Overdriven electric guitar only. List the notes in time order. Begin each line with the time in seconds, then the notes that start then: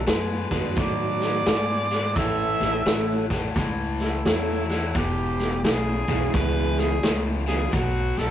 0.07 B2 G#3
0.51 B2 G#3
0.79 B2 F#3
1.46 B2 G#3
1.91 B2 G#3
2.17 A2 E3
2.86 A2 F#3
3.31 A2 F#3
3.56 A2 E3
4.27 A2 F#3
4.70 A2 F#3
4.95 E2 B2
5.64 E2 C#3
6.09 E2 C#3
6.34 E2 B2
7.04 E2 C#3
7.46 E2 C#3
7.72 B2 F#3